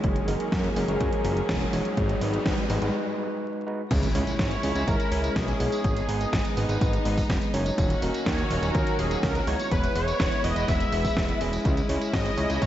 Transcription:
Already playing: G#3 C#4 F#4 C#5, riser
0.04 F#1 F#3 A#3 C#4 G#4, kick, closed hi-hat
0.16 closed hi-hat
0.28 F#1 G#3 C#4 F#4 A#4, open hi-hat
0.40 closed hi-hat
0.52 F#2, kick, snare, closed hi-hat
0.64 closed hi-hat
0.76 F#1 G#3 C#4 F#4 A#4, open hi-hat
0.88 F#1 G#3 C#4 F#4 A#4, closed hi-hat
1.01 F#2, kick, closed hi-hat
1.13 closed hi-hat
1.25 F#1 G#3 C#4 F#4 A#4, open hi-hat
1.37 closed hi-hat
1.49 E1, kick, snare, closed hi-hat
1.61 closed hi-hat
1.73 E1 G#3 D#4 F#4 C#5, open hi-hat
1.85 closed hi-hat
1.97 G#1 F#3 B3 D#4, kick, closed hi-hat
2.09 closed hi-hat
2.21 G#1 G#3 D#4 F#4 B4, open hi-hat
2.34 closed hi-hat
2.46 G#1, kick, snare, closed hi-hat
2.58 closed hi-hat
2.70 G#1 G#3 D#4 F#4 B4, open hi-hat
2.82 G#1 G#3 D#4 F#4 B4, closed hi-hat
3.18 G#3 D#4 F#4 B4
3.67 G#3 D#4 F#4 B4
3.91 C#2 G#3 C#4 E4, kick, closed hi-hat, crash, tambourine, impact
4.03 closed hi-hat, tambourine
4.15 C#2 G#3 C#4 E4 C#5, open hi-hat
4.27 closed hi-hat, tambourine
4.39 G#1 C#5, kick, snare, closed hi-hat, tambourine
4.51 closed hi-hat, tambourine
4.63 C#2 G#3 C#4 E4 C#5, open hi-hat
4.75 C#2 G#3 C#4 E4 C#5, closed hi-hat, tambourine
4.88 G#1 A#4, kick, closed hi-hat, tambourine
5.00 closed hi-hat, tambourine
5.12 C#2 G#3 C#4 E4 C#5, open hi-hat
5.24 closed hi-hat, tambourine
5.36 B1 G#4, kick, snare, closed hi-hat, tambourine
5.48 closed hi-hat, tambourine
5.60 B1 G#3 B3 D#4 C#5, open hi-hat
5.72 closed hi-hat, tambourine
5.84 G#1 B3 D#4 G#4, kick, closed hi-hat, tambourine
5.97 closed hi-hat, tambourine
6.08 G#1 G#3 B3 D#4 B4, open hi-hat
6.21 closed hi-hat, tambourine
6.33 G#1, kick, snare, closed hi-hat, tambourine
6.45 closed hi-hat, tambourine
6.57 G#1 G#3 B3 D#4 B4, open hi-hat
6.69 G#1 G#3 B3 D#4 B4, closed hi-hat, tambourine
6.81 G#1, kick, closed hi-hat, tambourine
6.93 closed hi-hat, tambourine
7.05 G#1 G#3 B3 D#4 B4, open hi-hat
7.17 kick, open hi-hat, tambourine
7.30 F#1, kick, snare, closed hi-hat, tambourine
7.42 closed hi-hat, tambourine
7.54 F#1 F#3 C#4 D#4 C#5, open hi-hat
7.66 closed hi-hat, tambourine
7.78 D#1 D#3 F#3 A#3 C#4 F#4, kick, closed hi-hat, tambourine
7.90 closed hi-hat, tambourine
8.02 D#1 F#3 C#4 D#4 A#4, open hi-hat
8.14 closed hi-hat, tambourine
8.26 D#2 C#5, kick, snare, closed hi-hat
8.39 closed hi-hat, tambourine
8.50 D#1 F#3 C#4 D#4 A#4, open hi-hat
8.63 D#1 F#3 C#4 D#4 A#4, closed hi-hat, tambourine
8.75 D#2 A#4, kick, closed hi-hat, tambourine
8.87 closed hi-hat, tambourine
8.99 D#1 F#3 C#4 D#4 G#4 A#4, open hi-hat
9.11 closed hi-hat, tambourine
9.23 C#2 A#4, kick, snare, closed hi-hat, tambourine
9.35 closed hi-hat, tambourine
9.47 C#2 G#3 B3 E4 C#5, open hi-hat
9.59 closed hi-hat, tambourine
9.71 E1 G#3 B3 E4 B4, kick, closed hi-hat, tambourine
9.84 closed hi-hat, tambourine
9.95 E1 G#3 B3 E4 B4 C#5, open hi-hat
10.08 closed hi-hat, tambourine
10.20 E1, kick, snare, closed hi-hat, tambourine
10.32 closed hi-hat, tambourine
10.44 E1 G#3 B3 E4 B4 D#5, open hi-hat
10.56 E1 G#3 B3 E4 B4, closed hi-hat, tambourine
10.68 E1 E5, kick, snare, closed hi-hat, tambourine
10.80 closed hi-hat, tambourine
10.92 E1 G#3 B3 E4 B4, open hi-hat
11.05 kick, open hi-hat, tambourine
11.17 E1, kick, snare, closed hi-hat
11.29 closed hi-hat, tambourine
11.41 E1 G#3 C#4 E4 D#5, open hi-hat
11.53 closed hi-hat, tambourine
11.65 C#2 C#4 E4, kick, closed hi-hat, tambourine
11.77 closed hi-hat, tambourine
11.89 C#2 G#3 C#4 E4 C#5, open hi-hat
12.02 closed hi-hat, tambourine
12.13 G#1 D#5, kick, snare, closed hi-hat, tambourine
12.26 closed hi-hat, tambourine
12.38 C#2 G#3 C#4 E4 C#5, open hi-hat
12.50 C#2 G#3 C#4 E4 C#5, closed hi-hat, tambourine
12.62 G#1 C#5, kick, closed hi-hat, tambourine

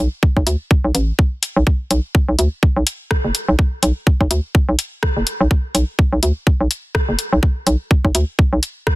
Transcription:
0.23 kick
0.37 B1, kick
0.47 D2, closed hi-hat
0.71 kick
0.84 B1
0.95 A1, closed hi-hat
1.19 kick
1.43 closed hi-hat
1.56 B1
1.67 kick
1.91 B1, closed hi-hat
2.15 kick
2.29 B1
2.39 D2, closed hi-hat
2.63 kick
2.77 B1
2.87 closed hi-hat
3.11 kick, cross-stick
3.24 F#1
3.35 closed hi-hat
3.48 B1
3.59 kick
3.83 B1, closed hi-hat
4.07 kick
4.21 B1, kick
4.31 D2, closed hi-hat
4.55 kick
4.69 B1
4.79 closed hi-hat
5.03 kick, cross-stick
5.17 F#1
5.27 closed hi-hat
5.41 B1
5.51 kick
5.75 B1, closed hi-hat
5.99 kick
6.13 B1
6.23 D2, closed hi-hat
6.47 kick
6.61 B1
6.71 closed hi-hat
6.95 kick, cross-stick
7.09 F#1
7.19 closed hi-hat
7.33 B1
7.43 kick
7.67 B1, closed hi-hat
7.91 kick
8.05 B1, kick
8.15 D2, closed hi-hat
8.39 kick
8.53 B1
8.63 closed hi-hat
8.87 kick, cross-stick

